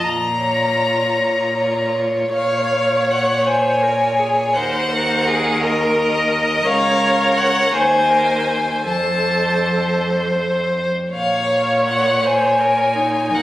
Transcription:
0.03 1.04 A#2 soft
0.03 1.95 A#5 medium
0.40 1.55 F4 soft
0.40 1.54 C#5 soft
1.18 2.21 A#2 soft
1.57 2.33 F4 soft
1.57 2.33 C#5 soft
2.33 4.57 A#2 medium
2.33 4.57 C#5 soft
2.33 3.48 C#5 medium
2.33 3.12 F5 medium
3.11 3.47 F#5 medium
3.46 3.84 C5 medium
3.46 4.55 G#5 medium
3.83 4.20 A#4 soft
4.19 4.54 G#4 soft
4.54 6.65 D#2 medium
4.54 4.90 A#4 medium
4.54 4.93 C5 soft
4.54 5.62 F#5 medium
4.91 5.29 A#4 medium
4.91 5.27 C5 medium
5.25 5.65 G#4 medium
5.25 6.66 A#4 medium
5.63 6.67 A#4 medium
5.63 6.68 D#5 medium
6.66 7.69 C#2 medium
6.66 7.75 A#4 medium
6.66 7.76 C#5 medium
6.66 7.39 F5 loud
7.37 7.74 F#5 loud
7.72 8.86 D#2 medium
7.72 8.85 C5 medium
7.72 8.12 C5 medium
7.72 8.88 G#5 medium
8.10 8.50 A#4 medium
8.48 8.86 C5 medium
8.85 10.94 F2 medium
8.85 10.55 A4 medium
8.85 10.90 C5 medium
8.85 10.00 A5 medium
11.13 13.34 A#2 medium
11.13 13.28 C#5 soft
11.13 12.26 C#5 medium
11.13 11.84 F5 medium
11.87 12.27 F#5 medium
12.25 12.62 C5 medium
12.25 13.36 G#5 medium
12.60 12.97 A#4 medium
12.96 13.42 D#4 medium
13.32 13.42 D#2 medium
13.32 13.42 A#4 medium
13.32 13.42 F#5 medium

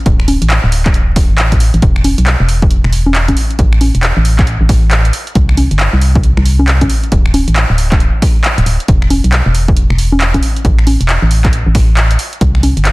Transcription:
0.06 0.38 D1 loud
0.06 kick loud
0.06 closed hi-hat medium
0.20 finger snap medium
0.28 open hi-hat loud
0.28 high conga medium
0.42 0.59 A1 medium
0.42 closed hi-hat medium
0.50 clap loud
0.50 closed hi-hat medium
0.64 1.31 D1 loud
0.72 finger snap soft
0.72 open hi-hat loud
0.86 kick loud
0.86 clap medium
0.86 closed hi-hat soft
0.94 closed hi-hat medium
1.16 finger snap medium
1.16 kick loud
1.16 open hi-hat loud
1.30 1.70 A1 loud
1.38 clap loud
1.38 closed hi-hat medium
1.52 kick medium
1.52 closed hi-hat medium
1.60 open hi-hat loud
1.74 1.81 A1 medium
1.74 closed hi-hat soft
1.82 2.14 E1 loud
1.82 kick loud
1.82 closed hi-hat medium
1.96 finger snap medium
2.04 open hi-hat loud
2.04 high conga medium
2.18 2.36 B1 medium
2.18 closed hi-hat medium
2.27 clap loud
2.27 closed hi-hat medium
2.40 2.81 E1 loud
2.49 finger snap soft
2.49 open hi-hat loud
2.62 kick loud
2.71 closed hi-hat medium
2.84 3.35 E1 loud
2.84 finger snap medium
2.93 open hi-hat loud
3.06 high conga medium
3.15 clap loud
3.15 closed hi-hat medium
3.28 kick medium
3.28 closed hi-hat medium
3.28 high conga medium
3.37 open hi-hat loud
3.50 closed hi-hat soft
3.59 3.91 A1 loud
3.59 kick loud
3.59 closed hi-hat medium
3.73 finger snap medium
3.81 open hi-hat loud
3.81 high conga medium
3.95 4.12 E1 medium
3.95 closed hi-hat medium
4.03 clap loud
4.03 closed hi-hat medium
4.17 4.57 A1 loud
4.25 open hi-hat medium
4.39 kick loud
4.39 clap medium
4.39 closed hi-hat soft
4.47 closed hi-hat medium
4.61 5.11 A1 loud
4.69 finger snap medium
4.69 kick loud
4.69 open hi-hat loud
4.91 clap loud
4.91 closed hi-hat medium
5.05 closed hi-hat medium
5.13 open hi-hat loud
5.27 closed hi-hat soft
5.35 5.67 C2 loud
5.35 kick loud
5.35 closed hi-hat medium
5.49 finger snap medium
5.57 open hi-hat loud
5.57 high conga medium
5.71 5.89 G1 medium
5.71 closed hi-hat medium
5.79 clap loud
5.79 closed hi-hat medium
5.93 6.34 C2 loud
6.01 finger snap soft
6.01 open hi-hat medium
6.15 kick loud
6.23 closed hi-hat medium
6.37 6.88 C2 loud
6.37 finger snap medium
6.46 open hi-hat loud
6.59 high conga medium
6.68 clap loud
6.68 closed hi-hat medium
6.81 kick medium
6.81 closed hi-hat medium
6.81 high conga medium
6.90 open hi-hat loud
7.04 closed hi-hat soft
7.12 7.44 D1 loud
7.12 kick loud
7.12 closed hi-hat medium
7.26 finger snap medium
7.34 open hi-hat loud
7.34 high conga medium
7.48 7.65 A1 medium
7.48 closed hi-hat medium
7.56 clap loud
7.56 closed hi-hat medium
7.70 8.10 D1 loud
7.78 open hi-hat medium
7.92 kick loud
7.92 clap medium
7.92 closed hi-hat soft
8.00 closed hi-hat medium
8.22 finger snap medium
8.22 kick loud
8.22 open hi-hat loud
8.44 clap loud
8.44 closed hi-hat medium
8.58 8.65 D1 loud
8.58 closed hi-hat medium
8.66 8.78 D1 medium
8.66 open hi-hat medium
8.80 closed hi-hat soft
8.88 9.20 E1 loud
8.88 kick loud
8.88 closed hi-hat medium
9.02 finger snap medium
9.10 open hi-hat loud
9.10 high conga medium
9.24 9.41 B1 medium
9.24 closed hi-hat medium
9.32 clap loud
9.32 closed hi-hat medium
9.46 9.87 E1 loud
9.55 finger snap soft
9.55 open hi-hat medium
9.68 kick loud
9.77 closed hi-hat medium
9.90 10.40 E1 loud
9.90 finger snap medium
9.98 open hi-hat loud
10.12 high conga medium
10.21 clap loud
10.21 closed hi-hat medium
10.34 kick medium
10.34 closed hi-hat medium
10.34 high conga medium
10.43 open hi-hat loud
10.56 closed hi-hat soft
10.65 10.97 A1 loud
10.65 kick loud
10.65 closed hi-hat medium
10.79 finger snap medium
10.87 open hi-hat loud
10.87 high conga medium
11.01 11.18 E1 medium
11.01 closed hi-hat medium
11.09 clap loud
11.09 closed hi-hat medium
11.22 11.63 A1 loud
11.31 open hi-hat loud
11.45 kick loud
11.45 clap medium
11.45 closed hi-hat soft
11.53 closed hi-hat medium
11.66 12.17 A1 medium
11.75 finger snap medium
11.75 kick loud
11.75 open hi-hat loud
11.97 clap loud
11.97 closed hi-hat medium
12.11 closed hi-hat medium
12.19 open hi-hat loud
12.33 closed hi-hat soft
12.41 12.73 C2 loud
12.41 kick loud
12.41 closed hi-hat medium
12.55 finger snap medium
12.63 open hi-hat loud
12.63 high conga medium
12.77 12.92 G1 medium
12.77 closed hi-hat medium
12.85 clap loud
12.85 closed hi-hat medium

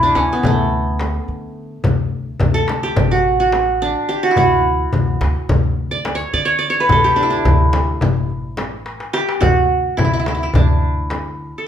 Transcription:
0.00 0.12 D2 medium
0.00 0.21 D4 medium
0.00 1.15 E4 medium
0.00 darbuka ka soft
0.15 0.28 D2 medium
0.15 1.70 C#4 medium
0.15 darbuka tek medium
0.15 frame drum medium
0.30 1.98 B3 medium
0.30 darbuka ka soft
0.43 1.17 D2 loud
0.43 2.24 A3 medium
0.43 darbuka dum loud
0.43 frame drum medium
0.99 darbuka tek medium
0.99 frame drum medium
1.28 1.77 D3 medium
1.28 darbuka ka soft
1.84 2.33 D2 medium
1.84 darbuka dum loud
1.84 frame drum medium
2.40 2.89 D2 medium
2.40 darbuka dum medium
2.40 frame drum medium
2.54 3.71 A4 loud
2.54 darbuka ka soft
2.68 darbuka tek medium
2.68 frame drum medium
2.82 3.17 G4 medium
2.82 darbuka ka soft
2.96 3.94 A1 medium
2.96 darbuka dum medium
2.96 frame drum medium
3.11 3.40 F#4 medium
3.40 4.15 F#4 medium
3.52 darbuka tek medium
3.52 frame drum medium
3.81 5.31 D4 medium
3.81 darbuka ka soft
4.09 4.29 G4 medium
4.23 4.37 F#4 medium
4.31 5.70 E4 medium
4.36 4.86 D2 medium
4.36 5.68 F#4 medium
4.36 darbuka dum medium
4.36 frame drum medium
4.93 5.17 D2 medium
4.93 darbuka dum medium
4.93 frame drum medium
5.07 darbuka ka soft
5.21 5.33 D2 medium
5.21 darbuka tek medium
5.21 frame drum medium
5.36 darbuka ka soft
5.49 6.22 D2 loud
5.49 frame drum medium
5.49 darbuka dum medium
5.91 6.21 D5 medium
6.05 darbuka tek medium
6.05 frame drum medium
6.15 6.40 C#5 medium
6.33 6.82 D3 medium
6.33 6.51 D5 loud
6.33 darbuka ka soft
6.45 6.65 C#5 loud
6.59 6.76 D5 medium
6.70 7.22 C#5 medium
6.80 7.89 B4 loud
6.89 7.38 D2 loud
6.89 8.09 A4 medium
6.89 frame drum medium
6.89 darbuka dum loud
7.04 8.30 G4 medium
7.16 7.30 D4 medium
7.23 8.62 E4 medium
7.30 8.80 D4 medium
7.45 7.94 D2 medium
7.45 darbuka dum loud
7.45 frame drum medium
7.60 darbuka ka soft
7.73 darbuka tek medium
7.73 frame drum medium
8.01 8.99 A1 medium
8.01 darbuka dum medium
8.01 frame drum medium
8.30 darbuka ka soft
8.57 darbuka tek medium
8.57 frame drum medium
8.86 darbuka tek medium
9.00 darbuka ka medium
9.13 9.47 G4 loud
9.13 darbuka tek medium
9.29 darbuka ka medium
9.41 9.90 D2 medium
9.41 10.71 F#4 medium
9.41 frame drum medium
9.41 darbuka dum medium
9.97 10.47 D2 medium
9.97 10.04 E4 medium
9.97 frame drum medium
9.97 darbuka dum medium
10.05 10.13 E4 medium
10.13 10.19 E4 medium
10.19 10.27 E4 medium
10.26 10.34 E4 medium
10.26 darbuka tek medium
10.26 frame drum medium
10.35 10.43 E4 medium
10.40 11.68 E4 medium
10.40 darbuka ka soft
10.54 11.51 D2 medium
10.54 11.68 D4 medium
10.54 darbuka dum medium
10.54 frame drum loud
11.10 darbuka tek medium
11.10 frame drum medium
11.58 11.68 A4 medium

